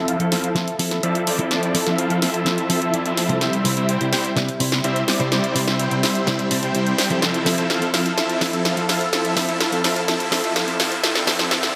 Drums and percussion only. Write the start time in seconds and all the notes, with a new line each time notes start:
0.08 closed hi-hat
0.20 closed hi-hat
0.32 snare, open hi-hat
0.44 closed hi-hat
0.56 snare, closed hi-hat
0.68 closed hi-hat
0.79 open hi-hat
0.91 snare, closed hi-hat
1.03 closed hi-hat
1.15 closed hi-hat
1.27 open hi-hat
1.39 closed hi-hat
1.51 snare, closed hi-hat
1.63 closed hi-hat
1.75 open hi-hat
1.87 snare, closed hi-hat
1.98 closed hi-hat
2.10 closed hi-hat
2.22 snare, open hi-hat
2.34 closed hi-hat
2.46 snare, closed hi-hat
2.58 closed hi-hat
2.70 open hi-hat
2.82 closed hi-hat
2.94 closed hi-hat
3.06 closed hi-hat
3.17 snare, open hi-hat
3.29 closed hi-hat
3.41 snare, closed hi-hat
3.53 closed hi-hat
3.65 open hi-hat
3.77 closed hi-hat
3.89 closed hi-hat
4.01 closed hi-hat
4.13 snare, open hi-hat
4.25 closed hi-hat
4.37 snare, closed hi-hat
4.48 closed hi-hat
4.60 open hi-hat
4.72 snare
4.84 closed hi-hat
4.96 closed hi-hat
5.08 snare, open hi-hat
5.20 closed hi-hat
5.32 snare, closed hi-hat
5.44 closed hi-hat
5.56 open hi-hat
5.68 snare
5.79 closed hi-hat
5.91 closed hi-hat
6.03 snare, open hi-hat
6.15 closed hi-hat
6.27 snare, closed hi-hat
6.39 closed hi-hat
6.51 open hi-hat
6.63 closed hi-hat
6.75 closed hi-hat
6.87 closed hi-hat
6.98 snare, open hi-hat
7.10 closed hi-hat
7.22 snare, closed hi-hat
7.34 closed hi-hat
7.46 snare, open hi-hat
7.58 closed hi-hat
7.70 snare, closed hi-hat
7.82 closed hi-hat
7.94 snare, open hi-hat
8.06 closed hi-hat
8.18 snare, closed hi-hat
8.30 closed hi-hat
8.41 snare, open hi-hat
8.53 closed hi-hat
8.65 snare, closed hi-hat
8.77 closed hi-hat
8.89 snare, open hi-hat
9.01 closed hi-hat
9.13 snare, closed hi-hat
9.25 closed hi-hat
9.37 snare, open hi-hat
9.49 closed hi-hat
9.61 snare, closed hi-hat
9.72 closed hi-hat
9.84 snare, open hi-hat
9.96 closed hi-hat
10.08 snare, closed hi-hat
10.20 closed hi-hat
10.32 snare, open hi-hat
10.44 closed hi-hat
10.56 snare, closed hi-hat
10.68 closed hi-hat
10.80 snare, open hi-hat
10.92 closed hi-hat
11.04 snare, closed hi-hat
11.15 snare, closed hi-hat
11.27 snare, open hi-hat
11.39 snare, closed hi-hat
11.51 snare, closed hi-hat
11.63 snare, closed hi-hat